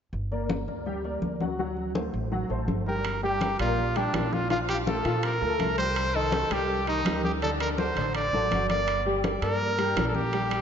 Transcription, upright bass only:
0.13 G1
0.68 D2
1.22 D2
2.14 A1
2.50 A1
2.68 G1
3.60 A#1
4.14 A#1
5.05 A#2
5.42 D2
5.59 C2
6.50 C2
7.05 D2
7.96 A1
8.33 A1
8.51 G1
9.42 G2
9.97 A#1

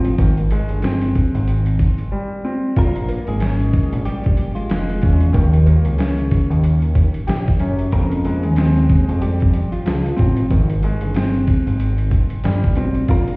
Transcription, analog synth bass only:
Already playing: A1
0.19 G#1
0.70 G1
1.35 G#1
2.77 A#1
3.28 G#1
3.92 A#1
4.70 F1
5.03 E2
5.35 D#2
5.86 C#2
6.50 D#2
7.28 A#1
7.60 F#2
7.93 F2
8.44 D#2
9.09 F2
9.86 C#2
10.19 A1
10.51 G#1
11.02 G1
11.67 G#1
12.45 G1
12.77 B1
13.09 A#1

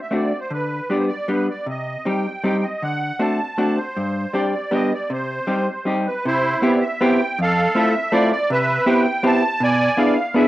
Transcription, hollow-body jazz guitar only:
0.11 A3 C4 D4 F#4
0.51 D3
0.90 G3 B3 D4 G4
1.28 G3 B3 D4 G4
1.66 C3
2.05 G3 C4 D#4 G4
2.44 G3 C4 D#4 G4
2.82 D3
3.19 A3 C4 D4 F#4
3.58 A3 C4 D4 F#4
3.96 G2
4.33 G3 C4 D4 G4
4.71 G3 B3 D4 G4
5.10 C3
5.47 G3 C4 D#4 G4
5.85 G3 C4 D#4 G4
6.25 C3
6.62 B3 C4 E4 G4
7.01 B3 C4 E4 G4
7.39 F2
7.75 A3 C4 E4 F4
8.12 A3 C4 E4 F4
8.50 C3
8.86 B3 C4 E4 G4
9.23 B3 C4 E4 G4
9.60 B2
9.97 B3 D4 E4 G#4
10.34 B3 D4 E4 G#4

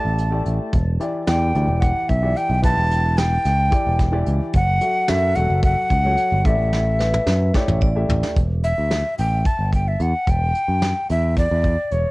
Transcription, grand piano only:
Already playing: A3 E4 G4 D5
0.31 A3 E4 G4 D5
1.00 E3 E4 G4 D5
1.27 E3 E4 G4 D5
1.54 E3 E4 G4 D5
2.22 E3 E4 G4 D5
2.62 E3 E4 G4 B4
3.70 E3 E4 G4 D5
4.12 E3 E4 G4 D5
4.81 F#3 F#4 A4 E5
5.08 F#3 F#4 A4 E5
5.36 F#3 F#4 A4 E5
6.05 F#3 F#4 A4 C#5
6.46 A3 E4 G4 D5
7.54 A3 E4 G4 D5
7.95 A3 E4 G4 E5

